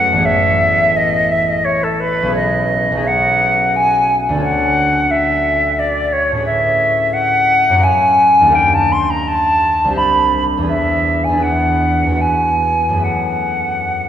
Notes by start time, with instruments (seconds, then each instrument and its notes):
Already playing: harp F#2 G#3 A3 F#4 G#4 B4 C#5 E5 F#5, flute F#5
0.12 harp A1 B3
0.18 harp G#4 B4
0.23 harp C#5, flute E5
0.96 flute D#5
1.31 flute E5
1.48 flute D#5
1.64 flute C#5
1.83 flute A4
2.00 flute B4
2.22 harp B1 C#4
2.28 harp G#4 B4
2.33 harp C#5, flute D#5
2.92 harp B1 C#4
2.97 harp G#4 B4
3.02 harp C#5
3.07 flute F#5
3.76 flute G#5
4.29 harp D2 D4
4.35 harp F#4 A4
4.40 harp C#5, flute F#5
5.10 flute E5
5.79 flute D5
6.12 flute C#5
6.32 harp A2 C#4
6.37 harp G#4 B4
6.43 harp C#5, flute E5
7.13 flute F#5
7.69 harp F#2 C#4
7.75 harp F#4 A#4
7.81 harp F5, flute G#5
8.41 harp D#2 D4
8.46 harp G4 A#4
8.52 harp F5, flute G5
8.74 flute A5
8.92 flute C6
9.10 flute A#5
9.27 flute A5
9.84 harp C2 D4
9.90 harp G4 C5
9.95 harp E5, flute B5
10.57 harp E2 D4
10.63 harp G#4 B4
10.69 harp E5, flute E5
11.24 flute G#5
11.29 harp E2 D4
11.34 harp G#4 B4
11.40 harp E5, flute F#5
12.06 harp E2 B3
12.11 harp F#4 B4
12.17 harp E5, flute G#5
12.89 harp F#2 A3
12.94 harp G#4 B4
13.00 harp E5, flute F#5